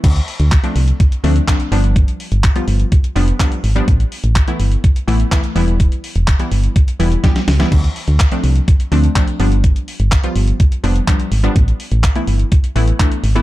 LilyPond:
<<
  \new Staff \with { instrumentName = "Synth pluck" } { \time 4/4 \key d \dorian \tempo 4 = 125 r4 r16 <f a c' d'>8. r8 <f a c' d'>16 r16 <f a c' d'>8 <f g b d'>8~ | <f g b d'>4 r16 <f g b f'>8. r8 <f g b d'>16 r16 <f g b d'>8 r16 <f g b d'>16 | r4 r16 <e a b e'>8. r8 <e a b e'>16 r16 <e a b e'>8 <e g b e'>8~ | <e g b e'>4 r16 <e g b e'>8. r8 <e g b e'>16 r16 <e g b g'>8 r16 <e g b e'>16 |
r4 r16 <f a c' d'>8. r8 <f a c' d'>16 r16 <f a c' d'>8 <f g b d'>8~ | <f g b d'>4 r16 <f g b f'>8. r8 <f g b d'>16 r16 <f g b d'>8 r16 <f g b d'>16 | r4 r16 <e a b e'>8. r8 <e a b e'>16 r16 <e a b d'>8 r16 <e a b e'>16 | }
  \new Staff \with { instrumentName = "FM bass" } { \clef bass \time 4/4 \key d \dorian d,8 r16 d,8 r16 c,8 r8 d,8 r8 g,,8~ | g,,8 r16 g,,8 r16 g,,8 r8 f,,8 r8 gis,,8 | a,,8 r16 a,,8 r16 g,,8 r8 a,,8 r8 e,,8~ | e,,8 r16 e,,8 r16 g,,8 r8 e,,8 r8 cis,8 |
d,8 r16 d,8 r16 c,8 r8 d,8 r8 g,,8~ | g,,8 r16 g,,8 r16 g,,8 r8 f,,8 r8 gis,,8 | a,,8 r16 a,,8 r16 g,,8 r8 a,,8 r8 gis,,8 | }
  \new DrumStaff \with { instrumentName = "Drums" } \drummode { \time 4/4 <cymc hh bd>16 hh16 hho16 hh16 <hc hh bd>16 hh16 hho16 hh16 <hh bd>16 hh16 hho16 hh16 <hc hh bd>16 hh16 hho16 hh16 | <hh bd>16 hh16 hho16 hh16 <hc hh bd>16 hh16 hho16 hh16 <hh bd>16 hh16 hho16 hh16 <hc hh bd>16 hh16 hho16 hh16 | <hh bd>16 hh16 hho16 hh16 <hc hh bd>16 hh16 hho16 hh16 <hh bd>16 hh16 hho16 hh16 <hc hh bd>16 hh16 hho16 hh16 | <hh bd>16 hh16 hho16 hh16 <hc hh bd>16 hh16 hho16 hh16 <hh bd>16 hh16 hho16 hh16 <hh bd sn>16 <hh sn>16 <hho sn>16 <hh sn>16 |
<cymc bd>16 hh16 hho16 hh16 <hc hh bd>16 hh16 hho16 hh16 <hh bd>16 hh16 hho16 hh16 <hc hh bd>16 hh16 hho16 hh16 | <hh bd>16 hh16 hho16 hh16 <hc hh bd>16 hh16 hho16 hh16 <hh bd>16 hh16 hho16 hh16 <hc hh bd>16 hh16 hho16 hh16 | <hh bd>16 hh16 hho16 hh16 <hc hh bd>16 hh16 hho16 hh16 <hh bd>16 hh16 hho16 hh16 <hc hh bd>16 hh16 hho16 hh16 | }
>>